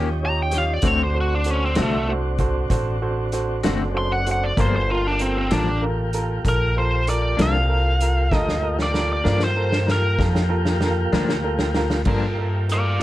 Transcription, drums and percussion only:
0, 0, Header, 1, 2, 480
1, 0, Start_track
1, 0, Key_signature, -2, "minor"
1, 0, Tempo, 623701
1, 646, Time_signature, 12, 3, 24, 8
1, 10027, End_track
2, 0, Start_track
2, 0, Title_t, "Drums"
2, 396, Note_on_c, 9, 42, 67
2, 403, Note_on_c, 9, 38, 32
2, 473, Note_off_c, 9, 42, 0
2, 480, Note_off_c, 9, 38, 0
2, 630, Note_on_c, 9, 42, 86
2, 638, Note_on_c, 9, 36, 112
2, 707, Note_off_c, 9, 42, 0
2, 715, Note_off_c, 9, 36, 0
2, 1109, Note_on_c, 9, 42, 55
2, 1186, Note_off_c, 9, 42, 0
2, 1349, Note_on_c, 9, 42, 81
2, 1357, Note_on_c, 9, 38, 108
2, 1426, Note_off_c, 9, 42, 0
2, 1434, Note_off_c, 9, 38, 0
2, 1835, Note_on_c, 9, 42, 53
2, 1838, Note_on_c, 9, 36, 70
2, 1912, Note_off_c, 9, 42, 0
2, 1915, Note_off_c, 9, 36, 0
2, 2078, Note_on_c, 9, 36, 87
2, 2079, Note_on_c, 9, 42, 79
2, 2155, Note_off_c, 9, 36, 0
2, 2156, Note_off_c, 9, 42, 0
2, 2555, Note_on_c, 9, 42, 56
2, 2632, Note_off_c, 9, 42, 0
2, 2797, Note_on_c, 9, 42, 74
2, 2804, Note_on_c, 9, 38, 98
2, 2874, Note_off_c, 9, 42, 0
2, 2881, Note_off_c, 9, 38, 0
2, 3283, Note_on_c, 9, 42, 58
2, 3360, Note_off_c, 9, 42, 0
2, 3520, Note_on_c, 9, 36, 107
2, 3520, Note_on_c, 9, 42, 82
2, 3597, Note_off_c, 9, 36, 0
2, 3597, Note_off_c, 9, 42, 0
2, 3995, Note_on_c, 9, 42, 57
2, 4072, Note_off_c, 9, 42, 0
2, 4238, Note_on_c, 9, 42, 87
2, 4246, Note_on_c, 9, 38, 107
2, 4315, Note_off_c, 9, 42, 0
2, 4323, Note_off_c, 9, 38, 0
2, 4717, Note_on_c, 9, 42, 58
2, 4794, Note_off_c, 9, 42, 0
2, 4962, Note_on_c, 9, 36, 82
2, 4964, Note_on_c, 9, 42, 86
2, 5038, Note_off_c, 9, 36, 0
2, 5041, Note_off_c, 9, 42, 0
2, 5443, Note_on_c, 9, 42, 71
2, 5520, Note_off_c, 9, 42, 0
2, 5686, Note_on_c, 9, 42, 85
2, 5694, Note_on_c, 9, 38, 108
2, 5763, Note_off_c, 9, 42, 0
2, 5771, Note_off_c, 9, 38, 0
2, 6161, Note_on_c, 9, 42, 64
2, 6238, Note_off_c, 9, 42, 0
2, 6400, Note_on_c, 9, 36, 101
2, 6401, Note_on_c, 9, 38, 64
2, 6476, Note_off_c, 9, 36, 0
2, 6478, Note_off_c, 9, 38, 0
2, 6530, Note_on_c, 9, 38, 54
2, 6607, Note_off_c, 9, 38, 0
2, 6763, Note_on_c, 9, 38, 53
2, 6840, Note_off_c, 9, 38, 0
2, 6883, Note_on_c, 9, 38, 61
2, 6960, Note_off_c, 9, 38, 0
2, 7119, Note_on_c, 9, 38, 70
2, 7196, Note_off_c, 9, 38, 0
2, 7232, Note_on_c, 9, 38, 59
2, 7309, Note_off_c, 9, 38, 0
2, 7483, Note_on_c, 9, 38, 67
2, 7560, Note_off_c, 9, 38, 0
2, 7605, Note_on_c, 9, 38, 79
2, 7682, Note_off_c, 9, 38, 0
2, 7840, Note_on_c, 9, 36, 87
2, 7846, Note_on_c, 9, 38, 80
2, 7916, Note_off_c, 9, 36, 0
2, 7923, Note_off_c, 9, 38, 0
2, 7967, Note_on_c, 9, 38, 72
2, 8044, Note_off_c, 9, 38, 0
2, 8200, Note_on_c, 9, 38, 65
2, 8277, Note_off_c, 9, 38, 0
2, 8317, Note_on_c, 9, 38, 85
2, 8394, Note_off_c, 9, 38, 0
2, 8565, Note_on_c, 9, 38, 86
2, 8642, Note_off_c, 9, 38, 0
2, 8688, Note_on_c, 9, 38, 82
2, 8765, Note_off_c, 9, 38, 0
2, 8917, Note_on_c, 9, 38, 83
2, 8994, Note_off_c, 9, 38, 0
2, 9039, Note_on_c, 9, 38, 107
2, 9116, Note_off_c, 9, 38, 0
2, 9158, Note_on_c, 9, 38, 85
2, 9235, Note_off_c, 9, 38, 0
2, 9274, Note_on_c, 9, 49, 86
2, 9282, Note_on_c, 9, 36, 104
2, 9351, Note_off_c, 9, 49, 0
2, 9359, Note_off_c, 9, 36, 0
2, 9769, Note_on_c, 9, 42, 50
2, 9846, Note_off_c, 9, 42, 0
2, 10027, End_track
0, 0, End_of_file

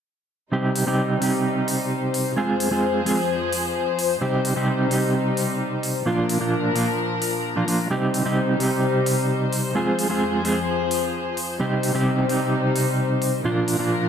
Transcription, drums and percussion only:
0, 0, Header, 1, 2, 480
1, 0, Start_track
1, 0, Key_signature, -3, "minor"
1, 0, Tempo, 461538
1, 546, Time_signature, 4, 2, 24, 8
1, 14652, End_track
2, 0, Start_track
2, 0, Title_t, "Drums"
2, 786, Note_on_c, 9, 46, 95
2, 890, Note_off_c, 9, 46, 0
2, 1266, Note_on_c, 9, 46, 86
2, 1370, Note_off_c, 9, 46, 0
2, 1746, Note_on_c, 9, 46, 97
2, 1850, Note_off_c, 9, 46, 0
2, 2227, Note_on_c, 9, 46, 84
2, 2331, Note_off_c, 9, 46, 0
2, 2707, Note_on_c, 9, 46, 100
2, 2811, Note_off_c, 9, 46, 0
2, 3186, Note_on_c, 9, 46, 85
2, 3290, Note_off_c, 9, 46, 0
2, 3666, Note_on_c, 9, 46, 97
2, 3770, Note_off_c, 9, 46, 0
2, 4146, Note_on_c, 9, 46, 87
2, 4250, Note_off_c, 9, 46, 0
2, 4626, Note_on_c, 9, 46, 100
2, 4730, Note_off_c, 9, 46, 0
2, 5107, Note_on_c, 9, 46, 95
2, 5211, Note_off_c, 9, 46, 0
2, 5587, Note_on_c, 9, 46, 97
2, 5691, Note_off_c, 9, 46, 0
2, 6067, Note_on_c, 9, 46, 84
2, 6171, Note_off_c, 9, 46, 0
2, 6546, Note_on_c, 9, 46, 99
2, 6650, Note_off_c, 9, 46, 0
2, 7026, Note_on_c, 9, 46, 90
2, 7130, Note_off_c, 9, 46, 0
2, 7506, Note_on_c, 9, 46, 102
2, 7610, Note_off_c, 9, 46, 0
2, 7987, Note_on_c, 9, 46, 89
2, 8091, Note_off_c, 9, 46, 0
2, 8467, Note_on_c, 9, 46, 93
2, 8571, Note_off_c, 9, 46, 0
2, 8947, Note_on_c, 9, 46, 86
2, 9051, Note_off_c, 9, 46, 0
2, 9426, Note_on_c, 9, 46, 99
2, 9530, Note_off_c, 9, 46, 0
2, 9906, Note_on_c, 9, 46, 85
2, 10010, Note_off_c, 9, 46, 0
2, 10387, Note_on_c, 9, 46, 91
2, 10491, Note_off_c, 9, 46, 0
2, 10867, Note_on_c, 9, 46, 82
2, 10971, Note_off_c, 9, 46, 0
2, 11347, Note_on_c, 9, 46, 98
2, 11451, Note_off_c, 9, 46, 0
2, 11827, Note_on_c, 9, 46, 80
2, 11931, Note_off_c, 9, 46, 0
2, 12307, Note_on_c, 9, 46, 96
2, 12411, Note_off_c, 9, 46, 0
2, 12786, Note_on_c, 9, 46, 80
2, 12890, Note_off_c, 9, 46, 0
2, 13266, Note_on_c, 9, 46, 92
2, 13370, Note_off_c, 9, 46, 0
2, 13746, Note_on_c, 9, 46, 80
2, 13850, Note_off_c, 9, 46, 0
2, 14226, Note_on_c, 9, 46, 93
2, 14330, Note_off_c, 9, 46, 0
2, 14652, End_track
0, 0, End_of_file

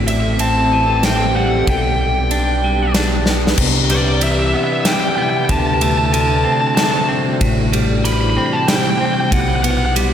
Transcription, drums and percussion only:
0, 0, Header, 1, 2, 480
1, 0, Start_track
1, 0, Key_signature, 1, "major"
1, 0, Tempo, 637620
1, 1261, Time_signature, 3, 2, 24, 8
1, 7629, End_track
2, 0, Start_track
2, 0, Title_t, "Drums"
2, 58, Note_on_c, 9, 51, 49
2, 133, Note_off_c, 9, 51, 0
2, 296, Note_on_c, 9, 51, 51
2, 371, Note_off_c, 9, 51, 0
2, 777, Note_on_c, 9, 38, 69
2, 777, Note_on_c, 9, 51, 54
2, 852, Note_off_c, 9, 38, 0
2, 852, Note_off_c, 9, 51, 0
2, 1260, Note_on_c, 9, 51, 50
2, 1261, Note_on_c, 9, 36, 91
2, 1336, Note_off_c, 9, 36, 0
2, 1336, Note_off_c, 9, 51, 0
2, 1738, Note_on_c, 9, 51, 45
2, 1813, Note_off_c, 9, 51, 0
2, 2217, Note_on_c, 9, 38, 74
2, 2217, Note_on_c, 9, 51, 52
2, 2292, Note_off_c, 9, 38, 0
2, 2292, Note_off_c, 9, 51, 0
2, 2453, Note_on_c, 9, 38, 50
2, 2528, Note_off_c, 9, 38, 0
2, 2613, Note_on_c, 9, 38, 65
2, 2689, Note_off_c, 9, 38, 0
2, 2692, Note_on_c, 9, 49, 94
2, 2695, Note_on_c, 9, 36, 88
2, 2767, Note_off_c, 9, 49, 0
2, 2771, Note_off_c, 9, 36, 0
2, 2933, Note_on_c, 9, 51, 59
2, 3008, Note_off_c, 9, 51, 0
2, 3171, Note_on_c, 9, 51, 60
2, 3246, Note_off_c, 9, 51, 0
2, 3652, Note_on_c, 9, 38, 70
2, 3652, Note_on_c, 9, 51, 64
2, 3727, Note_off_c, 9, 38, 0
2, 3727, Note_off_c, 9, 51, 0
2, 4134, Note_on_c, 9, 51, 58
2, 4135, Note_on_c, 9, 36, 93
2, 4210, Note_off_c, 9, 51, 0
2, 4211, Note_off_c, 9, 36, 0
2, 4375, Note_on_c, 9, 51, 53
2, 4451, Note_off_c, 9, 51, 0
2, 4620, Note_on_c, 9, 51, 56
2, 4695, Note_off_c, 9, 51, 0
2, 5098, Note_on_c, 9, 38, 77
2, 5098, Note_on_c, 9, 51, 58
2, 5173, Note_off_c, 9, 38, 0
2, 5173, Note_off_c, 9, 51, 0
2, 5578, Note_on_c, 9, 51, 57
2, 5579, Note_on_c, 9, 36, 96
2, 5653, Note_off_c, 9, 51, 0
2, 5654, Note_off_c, 9, 36, 0
2, 5822, Note_on_c, 9, 51, 57
2, 5897, Note_off_c, 9, 51, 0
2, 6061, Note_on_c, 9, 51, 59
2, 6136, Note_off_c, 9, 51, 0
2, 6537, Note_on_c, 9, 38, 76
2, 6537, Note_on_c, 9, 51, 62
2, 6612, Note_off_c, 9, 38, 0
2, 6612, Note_off_c, 9, 51, 0
2, 7017, Note_on_c, 9, 36, 97
2, 7018, Note_on_c, 9, 51, 66
2, 7092, Note_off_c, 9, 36, 0
2, 7094, Note_off_c, 9, 51, 0
2, 7257, Note_on_c, 9, 51, 58
2, 7332, Note_off_c, 9, 51, 0
2, 7499, Note_on_c, 9, 51, 62
2, 7574, Note_off_c, 9, 51, 0
2, 7629, End_track
0, 0, End_of_file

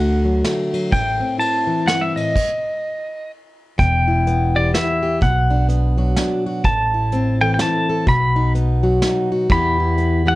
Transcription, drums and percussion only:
0, 0, Header, 1, 2, 480
1, 0, Start_track
1, 0, Key_signature, 1, "minor"
1, 0, Tempo, 476569
1, 930, Time_signature, 3, 2, 24, 8
1, 10427, End_track
2, 0, Start_track
2, 0, Title_t, "Drums"
2, 448, Note_on_c, 9, 38, 58
2, 448, Note_on_c, 9, 51, 46
2, 549, Note_off_c, 9, 38, 0
2, 549, Note_off_c, 9, 51, 0
2, 740, Note_on_c, 9, 51, 50
2, 841, Note_off_c, 9, 51, 0
2, 930, Note_on_c, 9, 36, 84
2, 931, Note_on_c, 9, 51, 51
2, 1031, Note_off_c, 9, 36, 0
2, 1031, Note_off_c, 9, 51, 0
2, 1414, Note_on_c, 9, 51, 49
2, 1514, Note_off_c, 9, 51, 0
2, 1894, Note_on_c, 9, 38, 65
2, 1894, Note_on_c, 9, 51, 41
2, 1994, Note_off_c, 9, 38, 0
2, 1994, Note_off_c, 9, 51, 0
2, 2186, Note_on_c, 9, 51, 46
2, 2286, Note_off_c, 9, 51, 0
2, 2373, Note_on_c, 9, 36, 82
2, 2376, Note_on_c, 9, 49, 67
2, 2474, Note_off_c, 9, 36, 0
2, 2476, Note_off_c, 9, 49, 0
2, 3817, Note_on_c, 9, 36, 92
2, 3821, Note_on_c, 9, 42, 56
2, 3918, Note_off_c, 9, 36, 0
2, 3921, Note_off_c, 9, 42, 0
2, 4300, Note_on_c, 9, 42, 51
2, 4400, Note_off_c, 9, 42, 0
2, 4779, Note_on_c, 9, 38, 65
2, 4779, Note_on_c, 9, 42, 53
2, 4879, Note_off_c, 9, 38, 0
2, 4879, Note_off_c, 9, 42, 0
2, 5257, Note_on_c, 9, 36, 93
2, 5258, Note_on_c, 9, 42, 53
2, 5357, Note_off_c, 9, 36, 0
2, 5359, Note_off_c, 9, 42, 0
2, 5735, Note_on_c, 9, 42, 51
2, 5836, Note_off_c, 9, 42, 0
2, 6209, Note_on_c, 9, 38, 71
2, 6209, Note_on_c, 9, 42, 50
2, 6310, Note_off_c, 9, 38, 0
2, 6310, Note_off_c, 9, 42, 0
2, 6690, Note_on_c, 9, 42, 49
2, 6693, Note_on_c, 9, 36, 88
2, 6791, Note_off_c, 9, 42, 0
2, 6794, Note_off_c, 9, 36, 0
2, 7172, Note_on_c, 9, 42, 52
2, 7272, Note_off_c, 9, 42, 0
2, 7646, Note_on_c, 9, 38, 71
2, 7646, Note_on_c, 9, 42, 53
2, 7747, Note_off_c, 9, 38, 0
2, 7747, Note_off_c, 9, 42, 0
2, 8126, Note_on_c, 9, 42, 59
2, 8128, Note_on_c, 9, 36, 92
2, 8227, Note_off_c, 9, 42, 0
2, 8229, Note_off_c, 9, 36, 0
2, 8612, Note_on_c, 9, 42, 51
2, 8713, Note_off_c, 9, 42, 0
2, 9084, Note_on_c, 9, 38, 71
2, 9084, Note_on_c, 9, 42, 53
2, 9185, Note_off_c, 9, 38, 0
2, 9185, Note_off_c, 9, 42, 0
2, 9563, Note_on_c, 9, 42, 56
2, 9566, Note_on_c, 9, 36, 101
2, 9664, Note_off_c, 9, 42, 0
2, 9667, Note_off_c, 9, 36, 0
2, 10050, Note_on_c, 9, 42, 48
2, 10150, Note_off_c, 9, 42, 0
2, 10427, End_track
0, 0, End_of_file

